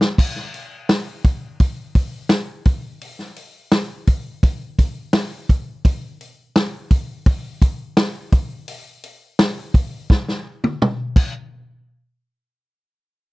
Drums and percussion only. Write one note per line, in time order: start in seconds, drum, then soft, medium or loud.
0.01 snare medium
0.18 kick loud
0.18 crash loud
0.36 snare soft
0.54 open hi-hat medium
0.89 snare medium
0.89 open hi-hat medium
1.24 kick medium
1.24 open hi-hat medium
1.60 kick loud
1.60 open hi-hat medium
1.95 kick medium
1.95 open hi-hat medium
2.29 snare loud
2.29 open hi-hat medium
2.65 kick loud
2.65 open hi-hat medium
3.01 open hi-hat medium
3.19 snare soft
3.36 open hi-hat soft
3.72 snare loud
3.72 open hi-hat medium
4.07 kick medium
4.07 open hi-hat medium
4.43 kick loud
4.43 open hi-hat medium
4.79 kick medium
4.79 open hi-hat medium
5.13 snare loud
5.13 open hi-hat medium
5.49 kick medium
5.49 open hi-hat medium
5.85 kick loud
5.85 open hi-hat medium
6.21 open hi-hat soft
6.56 snare loud
6.56 open hi-hat medium
6.91 kick medium
6.91 open hi-hat medium
7.26 kick loud
7.26 open hi-hat medium
7.62 kick medium
7.62 open hi-hat medium
7.97 snare loud
7.97 open hi-hat medium
8.32 kick loud
8.32 open hi-hat medium
8.68 open hi-hat medium
9.04 open hi-hat medium
9.39 snare loud
9.39 open hi-hat medium
9.74 kick medium
9.74 open hi-hat medium
10.10 kick loud
10.10 snare medium
10.28 snare medium
10.64 high tom medium
10.82 mid tom medium
11.16 kick loud
11.16 crash medium